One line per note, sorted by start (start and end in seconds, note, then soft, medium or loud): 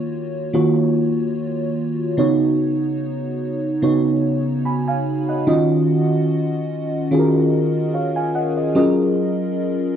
0.00 0.53 D#3 medium
0.00 0.54 A#3 medium
0.00 0.54 F4 medium
0.00 0.55 F#4 medium
0.00 0.55 C#5 medium
0.53 1.58 D#3 medium
0.53 1.58 A#3 medium
0.53 1.58 F4 medium
0.53 1.58 F#4 medium
0.53 1.59 C#5 medium
2.17 3.22 C#3 medium
2.17 3.22 B3 medium
2.17 3.22 D#4 medium
2.17 3.23 F#4 medium
2.17 3.23 C#5 medium
3.82 4.87 C#3 medium
3.82 4.87 B3 medium
3.82 4.87 D#4 medium
3.82 4.87 F#4 medium
3.82 4.87 C#5 medium
4.65 4.87 G#5 medium
4.65 4.86 B5 medium
4.88 5.27 F5 medium
4.88 5.26 G#5 medium
5.29 5.47 D#5 medium
5.29 5.68 F#5 medium
5.47 6.51 D#3 medium
5.47 6.51 C#4 medium
5.47 6.52 F4 medium
5.47 6.52 F#4 medium
5.47 6.52 D#5 loud
7.11 8.15 D#3 medium
7.11 8.16 C#4 medium
7.11 8.16 F4 medium
7.11 8.16 F#4 medium
7.11 7.19 G#4 medium
7.19 8.20 A#4 medium
7.94 8.15 C#5 medium
7.94 8.15 F5 medium
8.16 8.34 F5 medium
8.16 8.34 G#5 medium
8.35 8.56 D#5 medium
8.35 8.56 F#5 medium
8.57 8.76 D#5 medium
8.75 9.80 F#3 medium
8.75 9.80 C#4 medium
8.75 9.80 F4 medium
8.75 9.80 G#4 medium
8.75 9.80 A#4 medium
8.75 9.80 D#5 medium